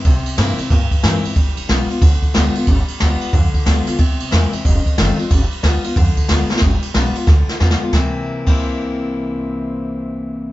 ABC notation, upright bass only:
X:1
M:4/4
L:1/8
Q:"Swing" 1/4=183
K:Cmix
V:1 name="Upright bass" clef=bass
C,, z G,, z B,, z G,, z | G,,, G,,, =B,,, z D,, z D,, z | G,,, z D,, z F,, z D,, z | z C,, E,, z F,,, z ^F,,, z |
G,,, z D,, z F,, z D,, z | G,,, z =B,,, z D,, z E,, z | C,, z2 C,,4- C,,- | C,,8 |]